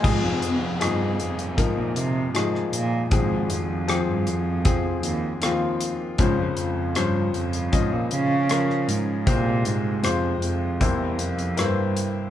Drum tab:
CC |x---------------|----------------|----------------|----------------|
HH |--x-x-xxx-x-x-x-|x-x-x-x-x-x-x-x-|x-x-x-xxx-x-x-x-|x-x-x-x-x-xxx-x-|
SD |----r-------rr--|----r-------r---|----r-------rr--|----r-------r---|
BD |o-------o-------|o-------o-------|o-------o-------|o-------o-------|